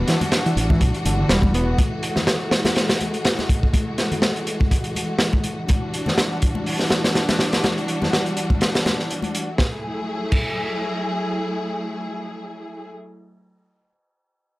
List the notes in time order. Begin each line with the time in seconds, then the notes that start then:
Already playing: E3 G3 D4 F#4
0.07 E3, snare, closed hi-hat
0.21 closed hi-hat, high conga, low conga
0.32 snare, closed hi-hat
0.46 E3, closed hi-hat
0.57 A1, closed hi-hat
0.70 E3, kick, high conga
0.81 B1, kick, closed hi-hat
0.94 closed hi-hat
1.05 G1 D3, closed hi-hat, high conga
1.19 D3
1.29 E1 G3, snare, closed hi-hat
1.42 kick, high conga
1.54 B3, closed hi-hat
1.78 G#3 A3, kick, closed hi-hat, high conga
2.03 closed hi-hat
2.16 snare, high conga, low conga
2.27 snare, closed hi-hat
2.51 snare, closed hi-hat
2.65 snare, closed hi-hat, high conga
2.75 snare, closed hi-hat
2.89 snare, closed hi-hat
3.00 closed hi-hat, high conga
3.14 closed hi-hat
3.25 snare, closed hi-hat
3.38 snare, high conga
3.49 kick, closed hi-hat
3.63 kick
3.74 kick, closed hi-hat, high conga
3.98 snare, closed hi-hat
4.12 closed hi-hat, high conga, low conga
4.22 snare, closed hi-hat
4.36 closed hi-hat
4.47 closed hi-hat
4.60 kick, high conga
4.71 kick, closed hi-hat
4.84 closed hi-hat
4.95 closed hi-hat, high conga
5.19 snare, closed hi-hat
5.33 kick, high conga
5.44 closed hi-hat
5.68 E3 G3 D4 F#4, kick, closed hi-hat, high conga
5.94 closed hi-hat
6.06 snare, high conga, low conga
6.18 snare, closed hi-hat
6.42 kick, closed hi-hat
6.55 high conga
6.66 open hi-hat
6.79 snare
6.90 snare, closed hi-hat, high conga
7.04 snare, closed hi-hat
7.15 snare, closed hi-hat
7.29 snare, closed hi-hat, high conga
7.39 snare, closed hi-hat
7.53 snare, closed hi-hat
7.64 snare, closed hi-hat, high conga
7.78 closed hi-hat
7.88 closed hi-hat
8.02 snare, high conga, low conga
8.13 snare, closed hi-hat
8.26 closed hi-hat
8.37 closed hi-hat
8.50 kick, high conga
8.61 snare, closed hi-hat
8.75 snare, closed hi-hat
8.86 snare, closed hi-hat, high conga
8.99 snare
9.10 closed hi-hat
9.22 closed hi-hat, high conga
9.35 closed hi-hat
9.58 F#3 A3 E4 G#4, kick, snare
10.32 kick, crash